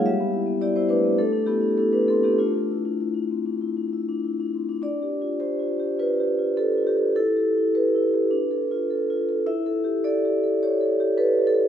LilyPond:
\new Staff \with { instrumentName = "Vibraphone" } { \time 4/4 \key d \dorian \tempo 4 = 103 << { <g' e''>4 <g' d''>16 <e' c''>16 <d' b'>8 <d' a'>8 <b g'>8 <d' a'>16 <d' b'>16 <c' a'>16 <b g'>16 | <a f'>2. r4 | d''4 c''4 b'4 a'8 g'8 | a'4 b'2~ b'8 r8 |
e''4 d''4 cis''4 b'8 a'8 | } \\ { g16 b16 e'16 b16 e'16 b16 a16 b16 a16 d'16 e'16 d'16 e'8 r16 d'16 | d'16 d'16 e'16 d'16 e'16 d'16 c'16 d'16 e'16 d'16 e'16 d'16 e'16 d'16 c'16 d'16 | \tuplet 3/2 { d'8 g'8 f'8 g'8 f'8 g'8 f'8 g'8 f'8 g'8 f'8 g'8 } | \tuplet 3/2 { e'8 g'8 e'8 g'8 e'8 g'8 d'8 a'8 f'8 a'8 f'8 a'8 } |
\tuplet 3/2 { e'8 a'8 g'8 a'8 g'8 a'8 g'8 a'8 g'8 a'8 g'8 a'8 } | } >> }